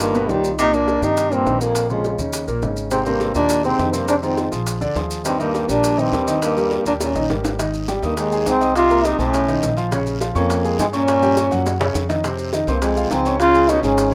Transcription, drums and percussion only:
0.00 high bongo medium
0.00 maracas medium
0.15 high bongo soft
0.15 maracas soft
0.29 high bongo soft
0.29 low bongo medium
0.29 maracas soft
0.44 maracas medium
0.59 high bongo medium
0.59 maracas medium
0.73 high bongo soft
0.73 maracas soft
0.88 high bongo medium
0.88 maracas soft
1.03 high bongo soft
1.03 maracas medium
1.17 high bongo medium
1.17 maracas medium
1.32 high bongo soft
1.32 maracas soft
1.46 high bongo soft
1.46 low bongo medium
1.46 maracas soft
1.61 maracas medium
1.75 high bongo medium
1.75 maracas medium
1.90 high bongo soft
1.90 maracas soft
2.04 high bongo medium
2.04 maracas soft
2.19 high bongo soft
2.19 maracas medium
2.33 high bongo medium
2.33 maracas medium
2.48 high bongo soft
2.48 maracas soft
2.62 high bongo soft
2.62 low bongo medium
2.62 maracas soft
2.77 maracas medium
2.91 high bongo medium
2.91 long guiro medium
2.91 maracas medium
3.06 high bongo soft
3.06 maracas soft
3.20 high bongo medium
3.20 short guiro medium
3.20 maracas soft
3.35 high bongo soft
3.35 short guiro medium
3.35 maracas medium
3.49 high bongo medium
3.49 long guiro medium
3.49 maracas medium
3.64 high bongo soft
3.64 maracas soft
3.79 high bongo soft
3.79 low bongo medium
3.79 short guiro medium
3.79 maracas soft
3.93 short guiro medium
3.93 maracas medium
4.08 high bongo medium
4.08 long guiro medium
4.08 maracas medium
4.23 high bongo soft
4.23 maracas soft
4.37 high bongo medium
4.37 short guiro medium
4.37 maracas soft
4.52 high bongo soft
4.52 short guiro medium
4.52 maracas medium
4.67 high bongo medium
4.67 long guiro medium
4.67 maracas medium
4.81 high bongo soft
4.81 maracas soft
4.96 high bongo soft
4.96 low bongo medium
4.96 short guiro medium
4.96 maracas soft
5.11 short guiro medium
5.11 maracas medium
5.25 high bongo medium
5.25 long guiro medium
5.25 maracas medium
5.40 maracas soft
5.54 high bongo medium
5.54 short guiro medium
5.54 maracas soft
5.69 high bongo soft
5.69 short guiro medium
5.69 maracas medium
5.84 high bongo medium
5.84 long guiro medium
5.84 maracas medium
5.99 high bongo soft
5.99 maracas soft
6.12 high bongo soft
6.12 low bongo medium
6.12 short guiro medium
6.12 maracas soft
6.27 short guiro medium
6.27 maracas medium
6.41 high bongo medium
6.41 long guiro medium
6.41 maracas medium
6.57 high bongo soft
6.57 maracas soft
6.71 high bongo medium
6.71 short guiro medium
6.71 maracas soft
6.85 high bongo soft
6.85 short guiro medium
6.85 maracas medium
7.00 high bongo medium
7.00 long guiro medium
7.00 maracas medium
7.15 low bongo medium
7.15 maracas soft
7.29 low bongo medium
7.29 short guiro medium
7.29 maracas soft
7.44 low bongo medium
7.44 short guiro medium
7.44 maracas medium
7.59 high bongo medium
7.59 long guiro medium
7.59 maracas medium
7.74 high bongo soft
7.74 maracas soft
7.88 high bongo medium
7.88 short guiro medium
7.88 maracas medium
8.03 high bongo soft
8.03 short guiro medium
8.03 maracas soft
8.17 high bongo medium
8.17 long guiro medium
8.17 maracas medium
8.32 high bongo soft
8.32 maracas soft
8.46 high bongo soft
8.46 low bongo medium
8.46 short guiro medium
8.46 maracas medium
8.61 short guiro medium
8.61 maracas soft
8.75 high bongo medium
8.75 long guiro medium
8.75 maracas medium
8.90 high bongo soft
8.90 maracas soft
9.05 high bongo medium
9.05 short guiro medium
9.05 maracas medium
9.19 high bongo soft
9.19 short guiro medium
9.19 maracas soft
9.33 high bongo medium
9.33 long guiro medium
9.33 maracas medium
9.48 high bongo soft
9.48 maracas soft
9.62 high bongo soft
9.62 low bongo medium
9.62 short guiro medium
9.62 maracas medium
9.77 short guiro medium
9.77 maracas soft
9.91 high bongo medium
9.91 long guiro medium
9.91 maracas medium
10.06 high bongo soft
10.06 maracas soft
10.21 high bongo medium
10.21 short guiro medium
10.21 maracas medium
10.35 high bongo soft
10.35 short guiro medium
10.35 maracas soft
10.49 high bongo medium
10.49 long guiro medium
10.49 maracas medium
10.65 high bongo soft
10.65 maracas soft
10.79 high bongo soft
10.79 low bongo medium
10.79 short guiro medium
10.79 maracas medium
10.93 short guiro medium
10.93 maracas soft
11.08 high bongo medium
11.08 long guiro medium
11.08 maracas medium
11.22 maracas soft
11.37 high bongo medium
11.37 short guiro medium
11.37 maracas medium
11.51 high bongo soft
11.51 short guiro medium
11.51 maracas soft
11.66 high bongo medium
11.66 long guiro medium
11.66 maracas medium
11.81 high bongo loud
11.81 maracas soft
11.94 low bongo medium
11.94 short guiro medium
11.94 maracas medium
12.09 low bongo medium
12.09 short guiro medium
12.09 maracas soft
12.24 high bongo medium
12.24 long guiro medium
12.24 maracas medium
12.38 high bongo soft
12.38 maracas soft
12.53 high bongo medium
12.53 short guiro medium
12.53 maracas medium
12.67 high bongo soft
12.67 short guiro medium
12.67 maracas soft
12.82 high bongo medium
12.82 long guiro medium
12.82 maracas medium
12.96 high bongo soft
12.96 maracas soft
13.11 high bongo soft
13.11 low bongo medium
13.11 short guiro medium
13.11 maracas medium
13.25 short guiro medium
13.25 maracas soft
13.40 high bongo medium
13.40 long guiro medium
13.40 maracas medium
13.54 high bongo soft
13.54 maracas soft
13.68 high bongo medium
13.68 short guiro medium
13.68 maracas medium
13.83 high bongo soft
13.83 short guiro medium
13.83 maracas soft
13.98 high bongo medium
13.98 long guiro medium
13.98 maracas medium

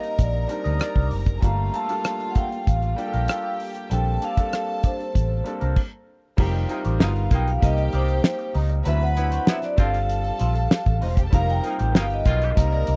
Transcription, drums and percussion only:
0.03 closed hi-hat soft
0.19 kick medium
0.19 closed hi-hat medium
0.49 closed hi-hat medium
0.65 closed hi-hat soft
0.80 cross-stick loud
0.80 closed hi-hat medium
0.96 kick medium
1.11 open hi-hat medium
1.26 kick medium
1.26 closed hi-hat soft
1.42 kick loud
1.42 closed hi-hat medium
1.74 closed hi-hat medium
1.89 closed hi-hat medium
2.04 cross-stick loud
2.04 closed hi-hat medium
2.20 cross-stick soft
2.20 closed hi-hat soft
2.35 kick medium
2.35 closed hi-hat medium
2.52 closed hi-hat soft
2.67 kick medium
2.67 closed hi-hat medium
2.83 closed hi-hat soft
2.98 closed hi-hat medium
3.14 closed hi-hat soft
3.28 cross-stick loud
3.28 closed hi-hat medium
3.60 open hi-hat medium
3.75 closed hi-hat soft
3.91 closed hi-hat medium
4.22 closed hi-hat medium
4.37 kick medium
4.37 closed hi-hat medium
4.53 cross-stick loud
4.53 closed hi-hat medium
4.83 kick medium
4.83 closed hi-hat medium
5.00 closed hi-hat soft
5.15 kick medium
5.15 closed hi-hat medium
5.46 closed hi-hat medium
5.61 closed hi-hat soft
5.76 kick loud
5.76 crash medium
6.38 kick loud
6.38 crash loud
6.69 closed hi-hat medium
6.85 closed hi-hat medium
7.00 snare loud
7.16 closed hi-hat soft
7.31 kick loud
7.31 closed hi-hat medium
7.48 closed hi-hat soft
7.62 kick medium
7.62 closed hi-hat medium
7.78 closed hi-hat soft
7.93 closed hi-hat medium
8.08 closed hi-hat soft
8.24 snare loud
8.38 closed hi-hat soft
8.54 open hi-hat medium
8.69 closed hi-hat soft
8.85 closed hi-hat medium
9.17 closed hi-hat medium
9.32 closed hi-hat medium
9.47 snare loud
9.62 snare soft
9.62 closed hi-hat soft
9.78 kick loud
9.78 closed hi-hat medium
9.94 closed hi-hat soft
10.10 closed hi-hat medium
10.24 closed hi-hat soft
10.39 closed hi-hat medium
10.55 closed hi-hat soft
10.71 snare loud
10.86 kick medium
10.86 closed hi-hat soft
11.02 open hi-hat medium
11.17 kick medium
11.17 closed hi-hat medium
11.33 kick loud
11.33 closed hi-hat medium
11.49 closed hi-hat soft
11.64 closed hi-hat medium
11.79 closed hi-hat medium
11.95 snare loud
12.10 closed hi-hat soft
12.25 kick medium
12.25 closed hi-hat medium
12.42 closed hi-hat soft
12.57 kick medium
12.57 closed hi-hat medium
12.72 closed hi-hat soft
12.87 closed hi-hat medium

